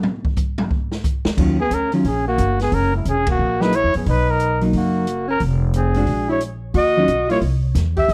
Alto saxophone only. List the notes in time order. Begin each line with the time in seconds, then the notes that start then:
1.61 B3
1.73 C#4
1.93 G#3
2.05 C#4
2.27 A#3
2.60 B3
2.74 C#4
2.94 G#3
3.07 C#4
3.27 A#3
3.61 D#4
3.74 E4
3.95 B3
4.08 D#4
4.30 D#4
4.75 A#3
5.28 C#4
5.75 C4
6.28 E4
6.74 F#4
7.29 F4
7.97 G4
8.10 G#4